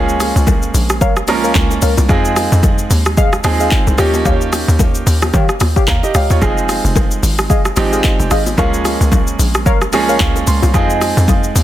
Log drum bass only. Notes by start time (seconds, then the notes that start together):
Already playing: C#2
0.36 C#2
0.74 A#1
1.28 C2
1.55 C#2
1.82 C#2
1.98 C2
2.09 F2
2.52 F2
2.90 D#2
3.44 D#2
3.87 C2
3.98 D#2
4.25 D#2
4.68 D#2
5.07 D#2
5.34 D#3
5.61 D#2
5.88 D#2
6.15 C#2
6.30 D#2
6.42 F1
6.84 F1
7.23 G#1
7.77 G#1
8.20 F1
8.31 G#1
8.58 C#2
9.01 C#2
9.39 A#1
9.93 C2
10.20 C#2
10.47 C#2
10.63 C2
10.74 F2
11.17 F2
11.55 D#2